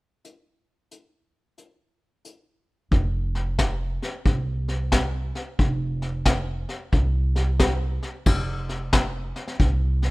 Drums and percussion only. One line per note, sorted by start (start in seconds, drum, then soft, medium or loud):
0.25 closed hi-hat soft
0.91 closed hi-hat soft
1.58 closed hi-hat soft
2.25 closed hi-hat medium
2.92 kick medium
2.92 snare soft
3.35 snare soft
3.59 kick medium
3.59 snare medium
3.59 hi-hat pedal medium
4.02 snare soft
4.25 kick medium
4.25 snare soft
4.68 snare soft
4.92 kick medium
4.92 snare medium
4.92 hi-hat pedal medium
5.35 snare soft
5.59 kick loud
5.59 snare soft
6.02 snare soft
6.25 kick medium
6.25 snare medium
6.25 hi-hat pedal medium
6.69 snare soft
6.92 kick medium
6.92 snare soft
7.36 snare soft
7.60 kick medium
7.60 snare loud
7.60 hi-hat pedal medium
8.03 snare soft
8.26 kick loud
8.26 snare soft
8.26 crash medium
8.69 snare soft
8.93 kick medium
8.93 snare loud
8.93 hi-hat pedal medium
9.36 snare soft
9.48 snare soft
9.59 kick loud
9.59 snare soft
10.02 snare soft